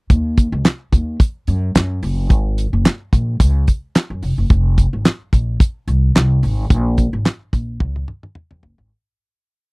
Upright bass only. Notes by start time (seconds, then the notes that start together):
0.10 D#2
0.52 C#2
0.92 D#2
1.48 F#2
1.75 F#2
2.03 F#1
2.30 G#1
2.73 F#1
3.13 A#1
3.40 C#2
4.10 F#2
4.23 F1
4.38 F#1
4.50 F1
4.93 G#1
5.33 A#1
5.88 C2
6.15 C2
6.43 G#1
6.70 A#1
7.13 G#1
7.53 A#1
7.80 C#2
8.51 F2
8.63 F#1
8.79 G#1